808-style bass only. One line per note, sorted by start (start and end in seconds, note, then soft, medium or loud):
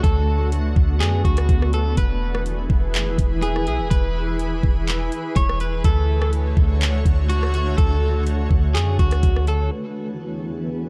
0.04 0.74 D2 loud
0.76 1.02 D2 loud
1.01 1.24 F#2 loud
1.25 1.48 D2 loud
1.49 1.96 D2 loud
1.97 2.67 E1 loud
2.70 2.96 E1 loud
2.94 3.08 F#1 loud
3.06 3.18 E1 loud
3.18 3.68 E1 loud
3.67 3.80 B1 loud
3.79 3.90 E1 loud
3.91 4.61 E1 loud
4.63 5.10 E1 loud
5.36 5.83 E1 loud
5.85 6.54 D2 loud
6.57 7.04 D2 loud
7.06 7.75 D2 loud
7.78 8.48 D2 loud
8.51 8.77 D2 loud
8.75 8.98 F#2 loud
8.99 9.22 D2 loud
9.23 9.70 D2 loud